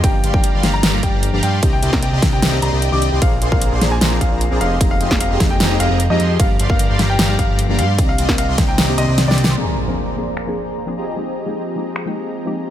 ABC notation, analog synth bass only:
X:1
M:4/4
L:1/16
Q:1/4=151
K:Cm
V:1 name="Analog synth bass" clef=bass
G,,,2 G,,, G,,,2 G,,, G,,,2 G,,,2 G,,, G,,,2 G,,, G,,2 | C,,2 C,, C,,2 C,, C,,2 C,,2 C,, C,,2 C,,2 C,, | B,,,2 B,,, B,,,2 B,,, B,,,2 B,,,2 B,,, B,,,2 B,,, F,,,2 | F,,,2 F,,, F,,,2 F,,, F,,,2 F,,,2 F,,, F,,,2 F,, F,,2 |
G,,,2 G,,, G,,,2 G,,, G,,,2 G,,,2 G,,, G,,,2 G,,, G,,2 | C,,2 C,, C,,2 C,, C,,2 C,,2 C,, C,,2 C,,2 C,, | z16 | z16 |]